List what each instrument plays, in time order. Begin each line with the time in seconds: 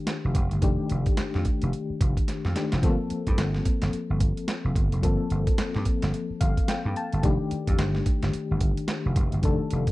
Already playing: fm electric piano D#3 A3 D4 G4
0.07 snare, closed hi-hat
0.25 slap bass F1
0.35 slap bass F1, kick, closed hi-hat
0.51 slap bass G1, closed hi-hat
0.62 slap bass F1, fm electric piano D#3 A3 D4 G4, kick, closed hi-hat
0.90 slap bass F1, closed hi-hat
1.06 kick, closed hi-hat
1.17 muted slap bass stroke, snare, closed hi-hat
1.34 slap bass F2, snare
1.45 kick, closed hi-hat
1.62 slap bass F1, closed hi-hat
1.73 closed hi-hat
1.90 muted slap bass stroke
2.01 slap bass F1, kick, closed hi-hat
2.17 kick, closed hi-hat
2.28 snare, closed hi-hat
2.45 slap bass F2, snare
2.55 fm electric piano D#3 A3 D4 G4, snare, closed hi-hat
2.72 slap bass F1, snare, closed hi-hat
2.82 slap bass G1, fm electric piano F3 A3 C4 A4, kick, closed hi-hat
2.89 fm electric piano A#3
3.10 muted slap bass stroke, closed hi-hat
3.27 slap bass G2, kick, closed hi-hat
3.38 slap bass G1, snare, closed hi-hat
3.54 snare
3.65 kick, closed hi-hat
3.82 slap bass G1, snare, closed hi-hat
3.93 muted slap bass stroke, closed hi-hat
4.10 slap bass G1
4.20 kick, closed hi-hat
4.37 closed hi-hat
4.48 snare, closed hi-hat
4.65 slap bass F1
4.76 slap bass G1, kick, closed hi-hat
4.92 slap bass F1, closed hi-hat
5.02 slap bass G1, fm electric piano F3 A#3 C4 A4, kick, closed hi-hat
5.30 slap bass G1, closed hi-hat
5.47 kick, closed hi-hat
5.58 muted slap bass stroke, snare, closed hi-hat
5.75 slap bass G2, snare
5.85 kick, closed hi-hat
6.02 slap bass G1, snare, closed hi-hat
6.14 closed hi-hat
6.30 muted slap bass stroke
6.41 slap bass G1, fm electric piano F5, kick, closed hi-hat
6.57 kick, closed hi-hat
6.68 fm electric piano G5, snare, closed hi-hat
6.85 slap bass G2
6.96 fm electric piano A5, closed hi-hat
7.13 slap bass G1, closed hi-hat
7.23 slap bass F1, fm electric piano D#3 A3 D4 G4, kick, closed hi-hat
7.51 muted slap bass stroke, closed hi-hat
7.67 slap bass F2, kick, closed hi-hat
7.78 slap bass G1, snare, closed hi-hat
7.95 snare
8.06 kick, closed hi-hat
8.22 slap bass G1, snare, closed hi-hat
8.33 muted slap bass stroke, closed hi-hat
8.51 slap bass G1
8.61 kick, closed hi-hat
8.77 closed hi-hat
8.88 snare, closed hi-hat
9.06 slap bass F1
9.16 slap bass F1, kick, closed hi-hat
9.32 slap bass G1, closed hi-hat
9.42 slap bass F1, fm electric piano D#3 A3 D4 A4, kick, closed hi-hat
9.70 slap bass F1, closed hi-hat
9.87 kick, closed hi-hat